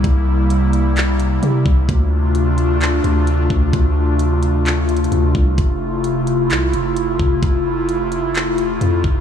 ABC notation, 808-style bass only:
X:1
M:4/4
L:1/8
Q:1/4=130
K:F
V:1 name="808-style bass" clef=bass
C,,6 C, C,, | D,,4- D,, D,,2 D,, | D,,6 D,, C,, | F,,,4 C,, F,,,2 F,,, |
F,,,6 F,, F,,, |]